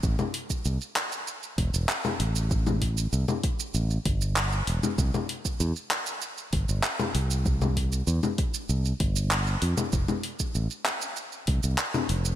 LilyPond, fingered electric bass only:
\new Staff \with { instrumentName = "Fingered electric bass" } { \clef bass \time 4/4 \key a \minor \tempo 4 = 97 a,,16 r8. c,16 r4 r16 e,,16 e,,16 r8 a,,8~ | a,,4 c,16 r8. a,,16 r16 g,,4 e,,16 r16 | c,16 r8. e,16 r4 r16 g,,16 g,,16 r8 c,8~ | c,4 e,16 r8. c,16 r16 g,,4 f,16 r16 |
f,,16 r8. a,,16 r4 r16 c,16 c,16 r8 f,,8 | }